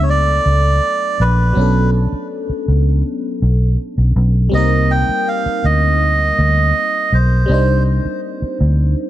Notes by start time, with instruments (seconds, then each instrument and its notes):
Already playing: fingered electric bass C#2, fm electric piano F#3 A3 B3 D4 A4
0.03 melodica C#5
0.10 melodica D5
0.46 fingered electric bass C#2
1.20 fingered electric bass A#1, melodica B4
1.53 fingered electric bass B1, fm electric piano F#3 B3 C#4
1.59 fm electric piano D4 A4
2.12 muted fingered electric bass stroke
2.50 muted fingered electric bass stroke
2.68 fingered electric bass C#2
3.42 fingered electric bass B1
3.98 fingered electric bass B1
4.16 fingered electric bass B1
4.49 fingered electric bass C2, fm electric piano G3 A#3 C4
4.54 fm electric piano D#4 A#4, melodica D#5
4.91 melodica G5
5.09 muted fingered electric bass stroke
5.28 melodica F5
5.46 muted fingered electric bass stroke
5.64 fingered electric bass D2, melodica D#5
6.39 fingered electric bass D2
7.12 fingered electric bass B1, melodica C5
7.46 fingered electric bass C2, fm electric piano G3 C4 D4
7.52 fm electric piano D#4 C5
8.05 muted fingered electric bass stroke
8.42 muted fingered electric bass stroke
8.61 fingered electric bass D2